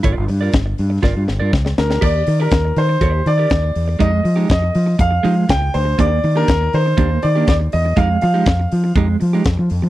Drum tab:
CC |----------------|x---------------|----------------|----------------|
HH |x-o-x-o---------|--o-x-o-x-o-x-o-|x-o-x-o-x-o-x-o-|x-o-x-o-x-o-x-o-|
SD |----o---o-o-oooo|----o-------o---|----o-------o---|----o-------o---|
BD |o---o---o---o---|o---o---o---o---|o---o---o---o---|o---o---o---o---|

CC |----------------|
HH |x-o-x-o-x-o-x-o-|
SD |----o-------o---|
BD |o---o---o---o---|